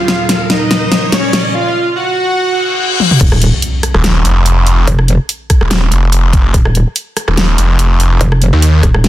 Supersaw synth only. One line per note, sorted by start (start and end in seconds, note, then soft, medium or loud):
0.00 0.42 F4 medium
0.00 0.42 F5 loud
0.50 1.05 D#4 medium
0.50 1.05 D#5 loud
1.12 1.44 C#4 medium
1.12 1.44 C#5 medium
1.54 1.86 F4 medium
1.54 1.86 F5 medium
1.96 3.13 F#4 medium
1.96 3.13 F#5 loud